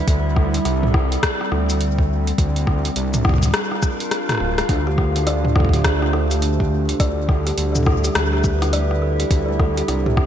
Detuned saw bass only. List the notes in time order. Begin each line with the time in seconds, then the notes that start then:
0.08 D2
0.65 C2
1.52 D2
2.38 D2
2.96 C2
4.40 D1
4.69 D2
7.00 D2
7.58 D2
8.15 D2
9.31 D2
9.88 C2